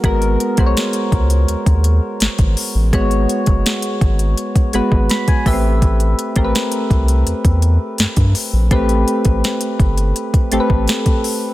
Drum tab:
HH |xxxxxxxxxxx-xxo-|xxxxxxxxxxx-xxo-|xxxxxxxxxxx-xxo-|xxxxxxxxxxx-xxo-|
SD |----o-------o---|----o-------o---|----o-------o---|----o-------o---|
BD |o--o--o--o---o--|o--o--o--o-o-oo-|o--o--o--o---o--|o--o--o--o-o-o--|